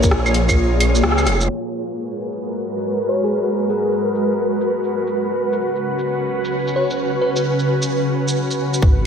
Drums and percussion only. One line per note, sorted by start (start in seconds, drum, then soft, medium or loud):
0.03 kick loud
0.03 shaker medium
0.11 cross-stick loud
0.26 claves medium
0.26 shaker soft
0.34 open hi-hat medium
0.49 kick medium
0.49 claves medium
0.49 shaker medium
0.80 open hi-hat medium
0.80 claves medium
0.95 shaker medium
1.04 cross-stick loud
1.18 claves soft
1.18 shaker soft
1.27 cross-stick medium
1.27 open hi-hat medium
1.41 shaker medium
1.87 shaker soft
2.10 shaker soft
2.32 shaker soft
2.78 shaker medium
3.01 shaker soft
3.24 shaker soft
3.69 shaker medium
3.92 shaker soft
4.15 shaker medium
4.61 shaker medium
4.84 shaker soft
5.07 shaker medium
5.53 shaker medium
5.76 shaker soft
5.99 shaker medium
6.45 shaker medium
6.67 shaker soft
6.90 shaker medium
7.36 shaker soft
7.59 shaker soft
7.82 shaker medium
8.28 shaker medium
8.51 shaker soft
8.74 shaker soft
8.82 kick loud